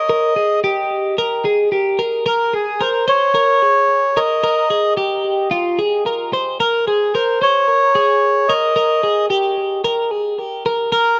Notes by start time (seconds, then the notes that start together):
Already playing: D#5
0.10 A#4
0.36 G#4
0.64 G4
1.18 A#4
1.45 G#4
1.72 G4
1.99 A#4
2.26 A#4
2.54 G#4
2.80 A#4 C5
3.08 C5 C#5
3.35 A#4
3.62 G#4
4.17 A#4 D#5
4.44 A#4
4.70 G#4
4.97 G4
5.51 F4
5.79 G#4
6.06 A#4
6.33 C5
6.60 A#4
6.87 G#4
7.14 A#4 C5
7.42 C5 C#5
7.68 A#4
7.95 G#4
8.48 A#4 D#5
8.76 A#4
9.03 G#4
9.30 G4
9.84 A#4
10.11 G#4
10.39 G4
10.66 A#4
10.92 A#4